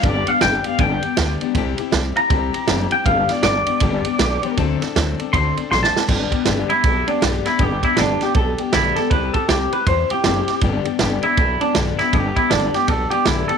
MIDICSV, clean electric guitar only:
0, 0, Header, 1, 2, 480
1, 0, Start_track
1, 0, Key_signature, 1, "major"
1, 0, Tempo, 377834
1, 47, Time_signature, 4, 2, 24, 8
1, 17251, End_track
2, 0, Start_track
2, 0, Title_t, "Clean electric guitar"
2, 0, Program_c, 0, 27
2, 68, Note_on_c, 0, 74, 93
2, 358, Note_off_c, 0, 74, 0
2, 358, Note_on_c, 0, 77, 96
2, 526, Note_off_c, 0, 77, 0
2, 531, Note_on_c, 0, 79, 95
2, 835, Note_off_c, 0, 79, 0
2, 835, Note_on_c, 0, 77, 91
2, 1011, Note_off_c, 0, 77, 0
2, 1011, Note_on_c, 0, 79, 106
2, 1705, Note_off_c, 0, 79, 0
2, 2756, Note_on_c, 0, 82, 101
2, 3681, Note_off_c, 0, 82, 0
2, 3713, Note_on_c, 0, 79, 104
2, 3884, Note_off_c, 0, 79, 0
2, 3884, Note_on_c, 0, 77, 116
2, 4189, Note_off_c, 0, 77, 0
2, 4189, Note_on_c, 0, 74, 88
2, 4347, Note_off_c, 0, 74, 0
2, 4362, Note_on_c, 0, 74, 127
2, 5761, Note_off_c, 0, 74, 0
2, 6771, Note_on_c, 0, 84, 104
2, 7080, Note_off_c, 0, 84, 0
2, 7259, Note_on_c, 0, 84, 109
2, 7399, Note_off_c, 0, 84, 0
2, 7404, Note_on_c, 0, 81, 101
2, 7658, Note_off_c, 0, 81, 0
2, 8506, Note_on_c, 0, 64, 101
2, 8974, Note_off_c, 0, 64, 0
2, 8990, Note_on_c, 0, 62, 77
2, 9166, Note_off_c, 0, 62, 0
2, 9483, Note_on_c, 0, 64, 82
2, 9653, Note_off_c, 0, 64, 0
2, 9666, Note_on_c, 0, 67, 95
2, 9950, Note_off_c, 0, 67, 0
2, 9966, Note_on_c, 0, 64, 83
2, 10135, Note_off_c, 0, 64, 0
2, 10155, Note_on_c, 0, 62, 101
2, 10435, Note_off_c, 0, 62, 0
2, 10452, Note_on_c, 0, 67, 105
2, 10608, Note_off_c, 0, 67, 0
2, 10614, Note_on_c, 0, 69, 85
2, 10912, Note_off_c, 0, 69, 0
2, 10912, Note_on_c, 0, 67, 83
2, 11089, Note_off_c, 0, 67, 0
2, 11091, Note_on_c, 0, 64, 99
2, 11381, Note_on_c, 0, 69, 86
2, 11383, Note_off_c, 0, 64, 0
2, 11565, Note_off_c, 0, 69, 0
2, 11565, Note_on_c, 0, 71, 102
2, 11854, Note_off_c, 0, 71, 0
2, 11859, Note_on_c, 0, 69, 85
2, 12042, Note_off_c, 0, 69, 0
2, 12052, Note_on_c, 0, 67, 96
2, 12343, Note_off_c, 0, 67, 0
2, 12361, Note_on_c, 0, 71, 84
2, 12533, Note_off_c, 0, 71, 0
2, 12542, Note_on_c, 0, 72, 89
2, 12828, Note_off_c, 0, 72, 0
2, 12844, Note_on_c, 0, 67, 94
2, 13445, Note_off_c, 0, 67, 0
2, 14273, Note_on_c, 0, 64, 100
2, 14737, Note_off_c, 0, 64, 0
2, 14749, Note_on_c, 0, 62, 91
2, 14926, Note_off_c, 0, 62, 0
2, 15228, Note_on_c, 0, 64, 93
2, 15404, Note_off_c, 0, 64, 0
2, 15425, Note_on_c, 0, 67, 104
2, 15706, Note_on_c, 0, 64, 90
2, 15707, Note_off_c, 0, 67, 0
2, 15882, Note_on_c, 0, 62, 102
2, 15883, Note_off_c, 0, 64, 0
2, 16174, Note_off_c, 0, 62, 0
2, 16194, Note_on_c, 0, 67, 99
2, 16356, Note_off_c, 0, 67, 0
2, 16356, Note_on_c, 0, 69, 93
2, 16642, Note_off_c, 0, 69, 0
2, 16647, Note_on_c, 0, 67, 95
2, 16838, Note_off_c, 0, 67, 0
2, 16838, Note_on_c, 0, 64, 112
2, 17125, Note_on_c, 0, 69, 96
2, 17131, Note_off_c, 0, 64, 0
2, 17251, Note_off_c, 0, 69, 0
2, 17251, End_track
0, 0, End_of_file